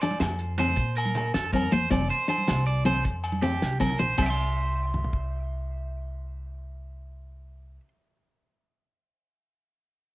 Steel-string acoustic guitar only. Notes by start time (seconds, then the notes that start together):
0.03 D4
0.60 C4
1.54 C4
1.72 A#3
1.90 C4
2.28 D4
2.85 C4
3.42 C4
3.80 C4
3.99 A#3
4.18 C4